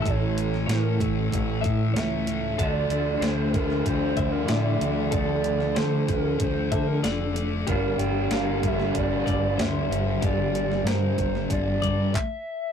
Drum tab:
HH |x-x-x-x-x-x-x-x-|x-x-x-x-x-x-x-x-|x-x-x-x-x-x-x-x-|x-x-x-x-x-x-x-x-|
CP |----------------|----------------|----------------|----------------|
SD |---oo-------o---|----o--o----o---|---oo-------o---|----o--o----o---|
BD |o-----o-o-o-----|o-----o-o-o-----|o-----o-o-o-----|o-----o-o-o-----|

HH |x-x-x-x-x-x-----|
CP |------------x---|
SD |---oo--o--------|
BD |o-----o-o-o-o---|